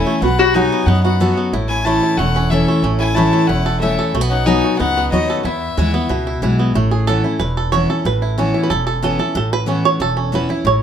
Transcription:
Already playing: E2 E3 A3 C#4 E4 G#5
0.07 A3
0.22 B1 B2 B3 F#4 F#5
0.39 F#3 F#4 B5
0.55 F#3 B3 D#4 F#4 G#5
0.72 B3
0.86 F#2 B3 D#4 F#5
1.03 B3 F#4 F#5
1.20 F#3 B3 D#4 F#4 A4
1.37 B3
1.53 A1 A2 E4
1.69 E4 G#5
1.85 E3 A3 C#4 E4 A5
2.03 E4
2.17 E1 E2 A3 C#4 F#5
2.36 C#4
2.50 E3 A3 C#4 E4 E5
2.68 A3
2.82 A1 A2 C#4
2.99 E4 G#5
3.15 E3 A3 C#4 E4 A5
3.33 A3
3.47 E1 E2 C#4 E4 F#5
3.66 A4
3.80 E3 A3 C#4 E4 E5
3.99 A4
4.14 B1 B2 A3
4.21 B3
4.29 C#4 D#4 F#5
4.46 F#3 B3 D#4 F#4 G#5
4.64 F#4
4.79 C#2 F#2 B3 D#4 F#5
4.97 B3
5.11 D#2 F#3 B3 D#4 F#4 D#5
5.30 A4
5.43 E2 B3 E4 E5
5.77 D#2 E3 G#3 B3 E4
5.94 B3 E4
6.09 C#2 B2 E4
6.27 E4
6.42 B1 E3 G#3 B3 E4
6.59 B3
6.74 A1 A2 A3
6.91 G#4
7.07 E3 B3 C#4 E4 A4
7.24 C#4 E4
7.39 E1 E2 B4
7.57 A4
7.72 E3 B3 C#4 E4 C#5
7.89 C#4 E4 A4
8.05 A1 A2 B4
8.22 E4
8.38 E3 B3 C#4 E4
8.54 E4
8.63 B4
8.70 E1 E2 A4
8.87 A4
9.02 E3 B3 C#4 E4 A4
9.19 C#4 E4 A4
9.35 A1 A2 A4
9.53 B4
9.66 E3 B3 C#4 E4
9.85 C#5
10.00 E1 E2 A4
10.17 C#4
10.32 E3 B3 C#4 E4 B4
10.49 C#4 E4
10.64 A1 A2 C#5

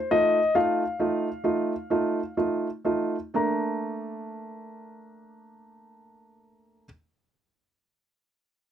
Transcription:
Already playing: C5
0.11 A3 D#4 F4 D#5
0.55 A3 D#4 F4 F5
0.99 A3 D#4 F4
1.44 A3 D#4 F4
1.90 A3 D#4 F4
2.37 A3 D#4 F4
2.85 A3 D#4 F4
3.34 A3 A#3 D4 A#5

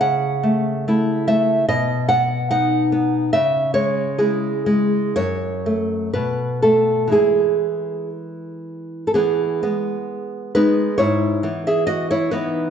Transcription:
0.01 C#3 F#5
0.43 A3
0.88 A3 E4
1.28 A3 E5
1.68 B2 D#5
2.09 B3 F#5
2.51 B3 D#4 F#5
2.92 B3
3.33 C#3 E5
3.74 G#3 C#5
4.18 G#3 E4 G#4
4.66 G#3
5.16 F#2 C#5
5.66 A3
6.13 B2 B4
6.62 A3 A4
7.08 E3 G#3 E4
7.12 G#4
9.07 A4
9.14 E3 B3 G#4
9.62 G#3 B3
10.55 G#3 B3 D#4 B4
10.98 G#2 E4 C#5
11.43 E3 B3
11.67 G#4 E5
11.87 F#4 D#5
12.11 E4 C#5
12.31 E3 B3 D#4 B4

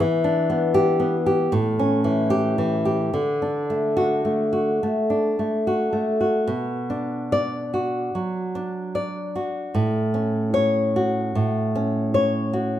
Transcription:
0.00 E3
0.24 D4
0.50 B3
0.74 G4
1.00 B3
1.26 G4
1.52 A2
1.79 C#4
2.04 E3
2.30 G4
2.58 E3
2.85 G4
3.14 D3
3.42 D4
3.70 A3
3.97 F#4
4.25 A3
4.53 F#4
4.83 A3
5.10 D4
5.39 A3
5.67 F#4
5.93 A3
6.21 F#4
6.47 B2
6.90 D4
7.32 D5
7.74 F#4
8.15 F#3
8.55 D4
8.95 D5
9.36 F#4
9.74 A2
10.14 C#4
10.54 C#5
10.96 F#4
11.35 A2
11.75 C#4
12.14 C#5
12.53 F#4

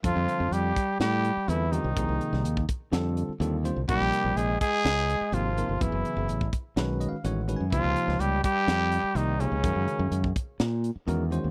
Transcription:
0.03 F2 D3 F3 G3 C4 F4 A4, kick, closed hi-hat
0.16 F2
0.29 closed hi-hat
0.40 F2
0.51 F2 G3 G4, closed hi-hat
0.76 kick, closed hi-hat
1.00 A2 G3 G4, snare, closed hi-hat
1.25 closed hi-hat
1.37 muted fingered electric bass stroke
1.48 E2 D3 E3 G3 C4 E4 F4 A4, closed hi-hat
1.71 D3 D#3 G3 C4 D#4 F4 G4, closed hi-hat
1.84 C2
1.96 C2 C3 F3 A#3 D#4 G#4, kick, closed hi-hat
2.09 C2
2.21 closed hi-hat
2.33 C2, snare
2.44 D#2, closed hi-hat
2.57 kick
2.69 kick, closed hi-hat
2.92 F2 D3 G3 C4 F4 A4, snare, closed hi-hat
3.17 closed hi-hat
3.29 muted fingered electric bass stroke
3.40 D#2 D3 G3 C4 F4 A4, closed hi-hat
3.64 D3 G3 C4 F4 C5, closed hi-hat
3.76 C2
3.88 A#1 C3 F3 G3 A#3 D#4 G4 A#4, kick, closed hi-hat
4.01 A#1
4.13 closed hi-hat
4.24 A#1
4.36 A#1 G#3 G#4, closed hi-hat
4.60 G#3 G#4, kick, closed hi-hat
4.85 C#2, snare, closed hi-hat
5.09 closed hi-hat
5.21 muted fingered electric bass stroke
5.32 G#1 C3 F3 A#3 D#4 F4 G4, closed hi-hat
5.56 C3 F3 A#3 D#4 A#4, closed hi-hat
5.69 G1
5.80 F#1 C#3 E3 F#3 B3 E4 G#4, kick, closed hi-hat
5.92 F#1
6.05 closed hi-hat
6.17 F#1
6.28 A1, closed hi-hat
6.41 kick
6.53 kick, closed hi-hat
6.76 B1 D#3 G#3 C#4 F#4 B4, snare, closed hi-hat
7.01 D#5, closed hi-hat
7.09 F5, muted fingered electric bass stroke
7.24 A1 D#3 G#3 C#4 F#4 C#5 F#5, closed hi-hat
7.47 D#3 G#3 C#4 F#4 B4, closed hi-hat
7.56 F#2 G#5
7.72 C#2 C3 F3 A#3 D#4 F4 G4, kick, closed hi-hat
7.84 C#2
7.96 closed hi-hat
8.08 C#2, snare
8.19 C#2 G3 G4, closed hi-hat
8.43 G3 G4, kick, closed hi-hat
8.68 F2, snare, closed hi-hat
8.92 closed hi-hat
9.04 muted fingered electric bass stroke
9.15 C2 C3 D#3 F3 A#3 D#4 G4, closed hi-hat
9.39 C3 C#3 F3 A#3 C#4 D#4 G4, closed hi-hat
9.52 C#2
9.64 F#2 D#3 G#3 C#4 F#4 A#4, kick, closed hi-hat
9.76 F#2
9.88 closed hi-hat
9.99 F#2
10.11 F#2, closed hi-hat
10.24 kick
10.36 kick, closed hi-hat
10.60 A#2, snare, closed hi-hat
10.84 closed hi-hat
10.96 muted fingered electric bass stroke
11.06 E2 D#3 G#3 C#4 F#4 A#4, closed hi-hat
11.30 D#3 G#3 C#4 F#4 C5, closed hi-hat
11.44 D#2

